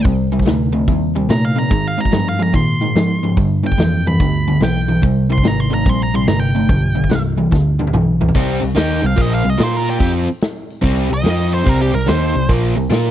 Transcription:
0.05 picked electric bass C2, overdriven electric guitar C3 G3, kick, open hi-hat
0.33 overdriven electric guitar C3 G3
0.39 kick, snare
0.46 picked electric bass D2, overdriven electric guitar C3 A3, snare, open hi-hat
0.73 overdriven electric guitar C3 A3
0.87 picked electric bass D#2, overdriven electric guitar C3 G3, kick, open hi-hat
1.15 overdriven electric guitar C3 G3
1.29 picked electric bass A#2, overdriven electric guitar C3 A3, lead electric guitar A#5, snare, open hi-hat
1.45 lead electric guitar F5
1.56 overdriven electric guitar C3 A3, lead electric guitar A#5
1.70 overdriven electric guitar G#2 D#3, picked electric bass G#2, lead electric guitar A#5, kick, open hi-hat
1.88 lead electric guitar F5
1.98 overdriven electric guitar G#2 D#3, lead electric guitar A#5
2.05 kick
2.11 picked electric bass G2, overdriven electric guitar G#2 F3, lead electric guitar A#5, snare, open hi-hat
2.29 lead electric guitar F5
2.39 overdriven electric guitar G#2 F3, lead electric guitar A#5
2.53 overdriven electric guitar G#2 D#3, picked electric bass A#2, lead electric guitar C6, kick, open hi-hat
2.81 overdriven electric guitar G#2 D#3
2.95 picked electric bass G#2, overdriven electric guitar G#2 F3, snare, open hi-hat
3.23 overdriven electric guitar G#2 F3
3.37 overdriven electric guitar G2 D3, picked electric bass G2, kick, open hi-hat
3.64 overdriven electric guitar G2 D3, lead electric guitar G5
3.72 kick
3.78 picked electric bass F2, overdriven electric guitar G2 E3, snare, open hi-hat
4.07 overdriven electric guitar G2 E3, lead electric guitar B5
4.19 picked electric bass D2, overdriven electric guitar G2 D3, kick, open hi-hat
4.48 overdriven electric guitar G2 D3
4.61 picked electric bass B1, overdriven electric guitar G2 E3, lead electric guitar G5, snare, open hi-hat
4.89 overdriven electric guitar G2 E3
5.03 picked electric bass C2, overdriven electric guitar C3 G3, kick, open hi-hat
5.30 overdriven electric guitar C3 G3, lead electric guitar C6
5.38 kick
5.44 picked electric bass G#1, overdriven electric guitar C3 A3, lead electric guitar A#5, snare, open hi-hat
5.60 lead electric guitar C6
5.71 overdriven electric guitar C3 A3, lead electric guitar A#5
5.86 picked electric bass A#1, overdriven electric guitar C3 G3, lead electric guitar C6, kick, open hi-hat
6.03 lead electric guitar A#5
6.14 overdriven electric guitar C3 G3, lead electric guitar C6
6.27 picked electric bass G1, overdriven electric guitar C3 A3, lead electric guitar A#5, snare, open hi-hat
6.40 lead electric guitar G5
6.55 overdriven electric guitar C3 A3
6.69 picked electric bass B1, overdriven electric guitar G2 D3, kick, open hi-hat
6.95 overdriven electric guitar G2 D3
7.04 kick
7.10 picked electric bass C2, overdriven electric guitar G2 E3, snare, open hi-hat
7.38 overdriven electric guitar G2 E3
7.52 picked electric bass D2, overdriven electric guitar G2 D3, kick, snare
7.80 overdriven electric guitar G2 D3, high tom
7.87 high tom
7.93 picked electric bass B1, overdriven electric guitar G2 E3, mid tom
8.21 overdriven electric guitar G2 E3, floor tom
8.28 floor tom
8.35 picked electric bass C2, overdriven electric guitar C3 G3 C4, kick, crash
8.61 picked electric bass C2, overdriven electric guitar C3 G3, open hi-hat
8.75 picked electric bass D#2, overdriven electric guitar D#3 A#3 D#4, lead electric guitar G5, snare, open hi-hat
9.02 picked electric bass C2, overdriven electric guitar C3 G3, lead electric guitar F5, open hi-hat
9.16 picked electric bass A#1, overdriven electric guitar A#2 F3 A#3, kick, open hi-hat
9.21 lead electric guitar D#5
9.34 lead electric guitar F5
9.44 picked electric bass C2, overdriven electric guitar C3 G3, open hi-hat
9.50 lead electric guitar D#5
9.57 picked electric bass A#2, overdriven electric guitar A#3 F4 A#4, snare, open hi-hat
9.63 lead electric guitar C5
9.77 lead electric guitar A#4
9.87 lead electric guitar G4, open hi-hat
9.99 picked electric bass F2, overdriven electric guitar F3 C4 F4, kick, open hi-hat
10.28 open hi-hat
10.41 snare, open hi-hat
10.70 open hi-hat
10.82 picked electric bass C2, overdriven electric guitar C3 G3 C4, kick, open hi-hat
11.10 picked electric bass C2, overdriven electric guitar C3 G3, open hi-hat
11.14 lead electric guitar D#5
11.23 picked electric bass F2, overdriven electric guitar F3 C4 F4, snare, open hi-hat
11.53 lead electric guitar C5, open hi-hat
11.64 picked electric bass C2, overdriven electric guitar C3 G3 C4, kick, open hi-hat
11.69 lead electric guitar A#4
11.82 lead electric guitar G4
11.92 picked electric bass C2, overdriven electric guitar C3 G3, lead electric guitar A#4, open hi-hat
12.06 picked electric bass D#2, overdriven electric guitar D#3 A#3 D#4, lead electric guitar C5, snare, open hi-hat
12.34 picked electric bass C2, overdriven electric guitar C3 G3, open hi-hat
12.49 picked electric bass A#1, overdriven electric guitar A#2 F3 A#3, kick, open hi-hat
12.76 picked electric bass C2, overdriven electric guitar C3 G3, open hi-hat
12.90 picked electric bass A#2, overdriven electric guitar A#3 F4 A#4, snare, open hi-hat

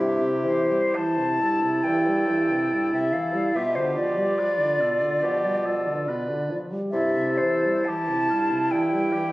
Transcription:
Already playing: french horn G2, bassoon C3, clarinet E4, flute E5
0.00 oboe G4
0.19 french horn C3
0.45 french horn E3, flute C5
0.70 french horn G3
0.95 french horn E3, oboe C5, flute A5
1.18 french horn C3
1.40 french horn G2, oboe A4
1.62 french horn C3
1.84 bassoon G2, french horn E3, flute G5
2.07 french horn G3
2.28 french horn E3
2.50 french horn C3
2.72 french horn G2
2.92 french horn C3, flute E5
3.12 french horn E3, flute F5
3.33 french horn G3
3.55 french horn B2, bassoon B2, clarinet F4, oboe G4, flute E5
3.75 french horn D3, flute C5
3.95 french horn F3, flute D5
4.18 french horn G3
4.39 french horn F3, oboe B4
4.59 french horn D3
4.79 french horn B2, oboe A4
5.00 french horn D3
5.22 bassoon B2, french horn F3, oboe G4
5.44 french horn G3
5.65 french horn F3, oboe A4
5.87 french horn D3
6.08 french horn B2, oboe B4
6.28 french horn D3
6.50 french horn F3
6.71 french horn G3
6.91 french horn G2, bassoon C3, clarinet E4, oboe A4, flute E5
7.16 french horn C3
7.37 french horn E3, flute C5
7.64 french horn G3
7.85 french horn E3, oboe G4, flute A5
8.09 french horn C3
8.30 french horn G2, oboe F4
8.51 french horn C3
8.71 bassoon G2, french horn E3, oboe E4, flute G5
8.93 french horn G3
9.12 french horn E3, oboe G4

